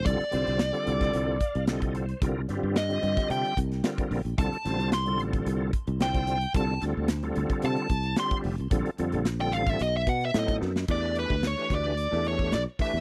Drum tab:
CC |----------------|----------------|----------------|----------------|
HH |xxxxxxxxx-xxxxxx|x-x-xxxxxxxxxxox|xxxxxxxxx-xxxxxx|x-x-xxxxxxxxxxox|
SD |----o--o----o---|--o-o--o---oo---|--o-o-------o-o-|--o-o-------o---|
BD |o------o--o--o--|o------o--o--o--|o------o--o--o--|o------o--o--o--|

CC |----------------|x---------------|
HH |xxxxxxxxx-xxxx--|--x-x-x-x-x-x-o-|
SD |----o-------o-oo|----ooo--o--o---|
BD |o------o--o--o--|o--o--o----o--o-|